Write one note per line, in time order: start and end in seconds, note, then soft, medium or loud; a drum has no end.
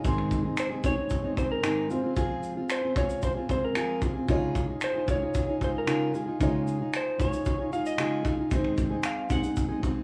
0.03 0.44 G#2 medium
0.03 0.44 D#3 medium
0.03 1.86 G#3 medium
0.03 0.45 G#3 medium
0.03 0.44 C4 medium
0.03 0.43 D#4 medium
0.03 1.87 D#4 medium
0.03 0.42 G#4 medium
0.03 kick loud
0.03 shaker medium
0.07 1.88 C6 medium
0.18 finger snap soft
0.31 kick medium
0.31 shaker soft
0.43 0.72 G#3 soft
0.43 0.71 C4 soft
0.43 0.70 D#4 soft
0.43 0.69 G#4 soft
0.57 0.67 C5 medium
0.57 finger snap medium
0.57 shaker medium
0.70 0.82 G#3 soft
0.70 0.83 C4 soft
0.70 0.84 D#4 soft
0.70 0.84 G#4 medium
0.83 0.97 G#3 medium
0.83 0.97 C4 medium
0.83 0.97 D#4 medium
0.83 0.95 G#4 medium
0.83 1.38 C#5 loud
0.83 kick loud
0.83 shaker medium
0.96 1.24 G#3 soft
0.96 1.23 C4 soft
0.96 1.22 D#4 soft
0.96 1.21 G#4 soft
1.10 kick medium
1.10 shaker medium
1.22 1.34 G#3 soft
1.22 1.35 C4 soft
1.22 1.37 D#4 soft
1.22 1.37 G#4 soft
1.35 1.62 G#3 medium
1.35 1.63 C4 medium
1.35 1.63 D#4 medium
1.35 1.63 G#4 medium
1.35 1.51 C5 medium
1.35 kick medium
1.35 shaker soft
1.52 1.88 A#4 medium
1.62 1.90 G#2 medium
1.62 1.90 D#3 medium
1.62 1.87 G#3 medium
1.62 1.88 C4 medium
1.62 1.90 D#4 medium
1.62 1.90 G#4 medium
1.62 finger snap medium
1.62 shaker medium
1.88 3.45 G#3 medium
1.88 2.03 G#3 soft
1.88 3.46 C4 medium
1.88 2.03 C4 medium
1.88 2.02 F4 medium
1.88 3.46 F4 soft
1.88 2.00 G#4 medium
1.88 3.47 C5 medium
1.88 shaker medium
2.01 2.15 C4 soft
2.01 2.15 F4 medium
2.01 2.16 G#4 medium
2.15 2.56 F3 medium
2.15 2.56 G#3 medium
2.15 2.56 C4 medium
2.15 2.56 F4 medium
2.15 2.54 G#4 medium
2.15 kick medium
2.15 shaker medium
2.43 shaker soft
2.55 2.84 C4 soft
2.55 2.82 F4 soft
2.55 2.80 G#4 soft
2.69 2.97 C5 medium
2.69 finger snap loud
2.69 shaker medium
2.82 2.95 C4 soft
2.82 2.97 F4 soft
2.82 2.96 G#4 soft
2.95 3.36 G#3 medium
2.95 3.36 C4 medium
2.95 3.36 F4 medium
2.95 3.34 G#4 medium
2.95 3.24 C#5 loud
2.95 kick loud
2.95 shaker medium
3.10 shaker medium
3.22 3.32 C5 loud
3.22 kick medium
3.22 shaker medium
3.35 3.49 C4 soft
3.35 3.49 F4 soft
3.35 3.49 G#4 medium
3.48 4.25 G#3 soft
3.48 3.74 G#3 medium
3.48 4.29 C4 soft
3.48 3.75 C4 medium
3.48 4.27 F4 soft
3.48 3.75 F4 medium
3.48 3.76 G#4 medium
3.48 4.29 C5 soft
3.48 3.64 C5 medium
3.48 kick medium
3.48 shaker soft
3.65 4.01 A#4 medium
3.74 4.02 F3 medium
3.74 4.00 G#3 medium
3.74 4.01 C4 medium
3.74 4.02 F4 medium
3.74 4.03 G#4 medium
3.74 finger snap loud
3.74 shaker medium
4.01 4.15 G#3 medium
4.01 4.16 C4 medium
4.01 4.15 F4 medium
4.01 4.13 G#4 medium
4.01 kick medium
4.01 shaker medium
4.14 4.29 C4 soft
4.14 4.29 F4 soft
4.14 4.28 G#4 soft
4.26 4.68 C#3 medium
4.26 6.35 G#3 medium
4.26 4.68 G#3 medium
4.26 6.36 D#4 medium
4.26 4.69 D#4 medium
4.26 6.36 F4 medium
4.26 4.68 F4 loud
4.26 kick loud
4.26 shaker soft
4.30 4.66 G#4 medium
4.30 6.37 C#5 medium
4.55 kick medium
4.55 shaker medium
4.67 4.96 D#4 soft
4.67 4.92 G#4 soft
4.81 5.10 C5 medium
4.81 finger snap medium
4.81 shaker medium
4.93 5.06 D#4 soft
4.93 5.07 F4 soft
4.93 5.07 G#4 soft
5.06 5.20 G#3 medium
5.06 5.21 D#4 medium
5.06 5.20 F4 medium
5.06 5.19 G#4 medium
5.06 kick medium
5.06 shaker medium
5.11 5.64 C#5 medium
5.20 5.48 D#4 soft
5.20 5.47 F4 soft
5.20 5.45 G#4 soft
5.34 kick medium
5.34 shaker medium
5.46 5.60 D#4 soft
5.46 5.61 F4 soft
5.46 5.60 G#4 medium
5.60 5.86 G#3 soft
5.60 5.86 D#4 medium
5.60 5.87 F4 medium
5.60 5.87 G#4 medium
5.60 kick medium
5.60 shaker soft
5.64 5.69 C5 medium
5.78 6.13 A#4 medium
5.86 6.13 C#3 medium
5.86 6.11 G#3 medium
5.86 6.13 D#4 medium
5.86 6.14 F4 medium
5.86 6.14 G#4 medium
5.86 finger snap medium
5.86 shaker medium
6.13 6.27 G#3 soft
6.13 6.27 D#4 soft
6.13 6.26 F4 medium
6.13 6.25 G#4 medium
6.13 shaker soft
6.26 6.40 D#4 soft
6.26 6.40 F4 medium
6.26 6.40 G#4 medium
6.39 6.80 C#3 medium
6.39 8.47 G#3 medium
6.39 6.80 G#3 medium
6.39 8.47 D#4 medium
6.39 6.80 D#4 medium
6.39 8.48 F4 medium
6.39 6.79 F4 loud
6.39 6.77 G#4 medium
6.39 8.49 C#5 medium
6.39 kick loud
6.39 shaker medium
6.67 shaker medium
6.79 7.19 D#4 soft
6.79 7.20 F4 soft
6.79 7.19 G#4 medium
6.93 7.21 C5 medium
6.93 finger snap loud
6.93 shaker medium
7.18 7.32 G#3 medium
7.18 7.33 D#4 medium
7.18 7.32 F4 medium
7.18 7.31 G#4 medium
7.18 7.70 C#5 medium
7.18 kick medium
7.18 shaker medium
7.32 7.60 D#4 soft
7.32 7.59 F4 soft
7.32 7.57 G#4 soft
7.32 shaker medium
7.45 kick medium
7.45 shaker medium
7.58 7.71 D#4 soft
7.58 7.72 F4 soft
7.58 7.72 G#4 medium
7.71 7.97 G#3 medium
7.71 7.98 D#4 medium
7.71 7.98 F4 medium
7.71 7.99 G#4 medium
7.71 7.86 F5 loud
7.71 shaker soft
7.86 8.26 D#5 medium
7.86 shaker medium
7.97 8.24 C#3 medium
7.97 8.23 G#3 medium
7.97 8.24 D#4 medium
7.97 8.25 F4 medium
7.97 8.26 G#4 medium
7.97 finger snap loud
7.97 shaker medium
8.24 8.38 G#3 medium
8.24 8.39 D#4 medium
8.24 8.38 F4 medium
8.24 8.36 G#4 medium
8.24 kick medium
8.24 shaker soft
8.37 8.52 D#4 medium
8.37 8.52 F4 soft
8.37 8.51 G#4 medium
8.49 8.91 G#2 medium
8.49 8.91 D#3 medium
8.49 10.03 G#3 medium
8.49 8.91 G#3 loud
8.49 10.03 C4 medium
8.49 8.92 C4 medium
8.49 10.03 D#4 medium
8.49 8.90 D#4 loud
8.49 8.89 G#4 medium
8.49 10.03 C5 medium
8.49 kick loud
8.49 shaker medium
8.64 finger snap soft
8.78 kick medium
8.78 shaker medium
8.91 9.28 G#3 soft
8.91 9.29 C4 soft
8.91 9.31 D#4 soft
8.91 9.30 G#4 medium
9.03 9.31 F5 medium
9.03 finger snap loud
9.03 shaker medium
9.29 9.43 G#3 medium
9.29 9.44 C4 medium
9.29 9.43 D#4 medium
9.29 9.41 G#4 medium
9.29 9.56 F#5 loud
9.29 kick medium
9.29 shaker medium
9.43 9.70 G#3 soft
9.43 9.70 C4 soft
9.43 9.68 D#4 soft
9.43 9.67 G#4 soft
9.43 shaker medium
9.56 kick medium
9.56 shaker medium
9.69 9.80 G#3 soft
9.69 9.81 C4 soft
9.69 9.82 D#4 medium
9.69 9.83 G#4 medium
9.82 10.03 G#3 medium
9.82 10.03 C4 medium
9.82 10.03 D#4 medium
9.82 10.03 G#4 medium
9.82 kick medium
9.82 shaker soft